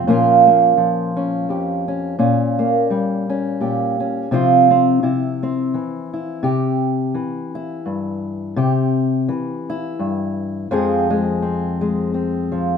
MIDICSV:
0, 0, Header, 1, 2, 480
1, 0, Start_track
1, 0, Tempo, 710059
1, 39, Time_signature, 3, 2, 24, 8
1, 8637, End_track
2, 0, Start_track
2, 0, Title_t, "Steel-string acoustic guitar"
2, 0, Program_c, 0, 25
2, 49, Note_on_c, 0, 46, 76
2, 54, Note_on_c, 0, 53, 60
2, 58, Note_on_c, 0, 58, 65
2, 64, Note_on_c, 0, 61, 59
2, 67, Note_on_c, 0, 65, 63
2, 314, Note_off_c, 0, 58, 0
2, 317, Note_on_c, 0, 58, 55
2, 515, Note_off_c, 0, 53, 0
2, 524, Note_on_c, 0, 53, 50
2, 785, Note_off_c, 0, 61, 0
2, 788, Note_on_c, 0, 61, 55
2, 1006, Note_off_c, 0, 46, 0
2, 1007, Note_on_c, 0, 41, 53
2, 1012, Note_off_c, 0, 65, 0
2, 1015, Note_on_c, 0, 67, 44
2, 1263, Note_off_c, 0, 61, 0
2, 1271, Note_on_c, 0, 61, 48
2, 1458, Note_off_c, 0, 53, 0
2, 1459, Note_off_c, 0, 61, 0
2, 1462, Note_off_c, 0, 58, 0
2, 1463, Note_off_c, 0, 67, 0
2, 1478, Note_on_c, 0, 46, 73
2, 1482, Note_on_c, 0, 61, 57
2, 1485, Note_off_c, 0, 41, 0
2, 1750, Note_on_c, 0, 58, 58
2, 1963, Note_on_c, 0, 55, 54
2, 2220, Note_off_c, 0, 61, 0
2, 2228, Note_on_c, 0, 61, 55
2, 2429, Note_off_c, 0, 46, 0
2, 2437, Note_on_c, 0, 46, 53
2, 2442, Note_on_c, 0, 67, 49
2, 2696, Note_off_c, 0, 61, 0
2, 2705, Note_on_c, 0, 61, 55
2, 2896, Note_off_c, 0, 61, 0
2, 2899, Note_off_c, 0, 58, 0
2, 2912, Note_off_c, 0, 46, 0
2, 2914, Note_on_c, 0, 48, 73
2, 2918, Note_off_c, 0, 55, 0
2, 2920, Note_on_c, 0, 53, 58
2, 2926, Note_on_c, 0, 60, 56
2, 2929, Note_off_c, 0, 67, 0
2, 2932, Note_on_c, 0, 65, 73
2, 3173, Note_off_c, 0, 60, 0
2, 3181, Note_on_c, 0, 60, 58
2, 3373, Note_off_c, 0, 48, 0
2, 3374, Note_off_c, 0, 60, 0
2, 3376, Note_off_c, 0, 53, 0
2, 3399, Note_on_c, 0, 48, 58
2, 3404, Note_on_c, 0, 64, 54
2, 3407, Note_off_c, 0, 65, 0
2, 3670, Note_on_c, 0, 60, 57
2, 3881, Note_off_c, 0, 48, 0
2, 3881, Note_on_c, 0, 52, 52
2, 4139, Note_off_c, 0, 64, 0
2, 4147, Note_on_c, 0, 64, 50
2, 4336, Note_off_c, 0, 52, 0
2, 4337, Note_off_c, 0, 64, 0
2, 4338, Note_off_c, 0, 60, 0
2, 4345, Note_on_c, 0, 48, 73
2, 4353, Note_on_c, 0, 67, 71
2, 4830, Note_on_c, 0, 52, 50
2, 4833, Note_off_c, 0, 48, 0
2, 5104, Note_on_c, 0, 64, 57
2, 5311, Note_on_c, 0, 43, 54
2, 5769, Note_off_c, 0, 52, 0
2, 5770, Note_off_c, 0, 43, 0
2, 5771, Note_off_c, 0, 67, 0
2, 5774, Note_off_c, 0, 64, 0
2, 5789, Note_on_c, 0, 48, 81
2, 5797, Note_on_c, 0, 67, 70
2, 6275, Note_off_c, 0, 48, 0
2, 6277, Note_on_c, 0, 52, 57
2, 6555, Note_on_c, 0, 64, 64
2, 6756, Note_on_c, 0, 43, 58
2, 7212, Note_off_c, 0, 43, 0
2, 7212, Note_off_c, 0, 52, 0
2, 7212, Note_off_c, 0, 67, 0
2, 7219, Note_off_c, 0, 64, 0
2, 7239, Note_on_c, 0, 41, 82
2, 7241, Note_on_c, 0, 53, 68
2, 7244, Note_on_c, 0, 56, 62
2, 7250, Note_on_c, 0, 60, 65
2, 7254, Note_on_c, 0, 68, 71
2, 7498, Note_off_c, 0, 56, 0
2, 7506, Note_on_c, 0, 56, 60
2, 7714, Note_off_c, 0, 60, 0
2, 7722, Note_on_c, 0, 60, 46
2, 7977, Note_off_c, 0, 56, 0
2, 7985, Note_on_c, 0, 56, 58
2, 8199, Note_off_c, 0, 60, 0
2, 8207, Note_on_c, 0, 60, 53
2, 8453, Note_off_c, 0, 53, 0
2, 8462, Note_on_c, 0, 53, 56
2, 8637, Note_off_c, 0, 41, 0
2, 8637, Note_off_c, 0, 53, 0
2, 8637, Note_off_c, 0, 56, 0
2, 8637, Note_off_c, 0, 60, 0
2, 8637, Note_off_c, 0, 68, 0
2, 8637, End_track
0, 0, End_of_file